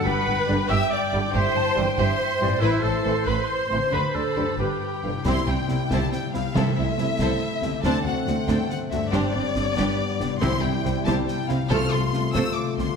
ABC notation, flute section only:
X:1
M:6/8
L:1/16
Q:3/8=93
K:G
V:1 name="Flute section"
f6 g6 | e2 a2 g2 e2 e2 d2 | c12- | c6 B3 z3 |
[K:C] z12 | z12 | z12 | z12 |
z12 | z12 |]